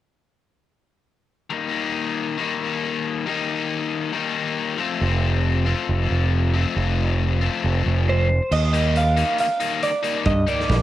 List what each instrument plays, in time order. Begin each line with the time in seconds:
1.50 overdriven electric guitar D#3 G3 A#3 D#4
2.38 overdriven electric guitar D#3 G3 A#3 D#4
3.26 overdriven electric guitar D#3 G3 A#3 D#4
4.13 overdriven electric guitar D#3 G3 A#3 D#4
4.78 overdriven electric guitar F3 A3 C4 F4
5.01 fingered electric bass F1
5.66 overdriven electric guitar F3 A3 C4 F4
5.89 fingered electric bass F1
6.11 fingered electric bass F1
6.53 overdriven electric guitar F3 A3 C4 F4
6.76 fingered electric bass F1
7.41 overdriven electric guitar F3 A3 C4 F4
7.64 fingered electric bass F1
7.86 fingered electric bass F1
8.09 clean electric guitar C5
8.51 fingered electric bass D#2, clean electric guitar D#5, crash
8.73 overdriven electric guitar D#3 G3 A#3 D#4, closed hi-hat
8.96 clean electric guitar F5, closed hi-hat
9.16 overdriven electric guitar D#3 G3 A#3 D#4, closed hi-hat
9.38 clean electric guitar F5, closed hi-hat
9.60 overdriven electric guitar D#3 G3 A#3 D#4, closed hi-hat
9.83 clean electric guitar D5, closed hi-hat
10.03 overdriven electric guitar D#3 G3 A#3 D#4, closed hi-hat
10.26 fingered electric bass G2, clean electric guitar D#5, kick, closed hi-hat
10.47 overdriven electric guitar D#3 G3 A#3 D#4, clean electric guitar D5, closed hi-hat
10.60 snare
10.70 fingered electric bass A#1, kick, snare, closed hi-hat